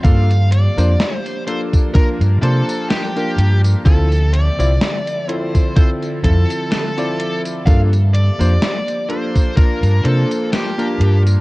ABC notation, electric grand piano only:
X:1
M:4/4
L:1/16
Q:"Swing 16ths" 1/4=63
K:Gdor
V:1 name="Electric grand piano"
[B,DFA] z2 [B,DFc] z2 [B,DFA]2 [B,DFB]2 [B,DFc]3 [B,DFB]3 | [CEFA] z2 [CEFd] z2 [CEFA]2 [CEFA]2 [CEFA]3 [CEFd]3 | [B,DFA] z2 [B,DFc] z2 [B,DFA]2 [B,DFB]2 [B,DFc]3 [B,DFB]3 |]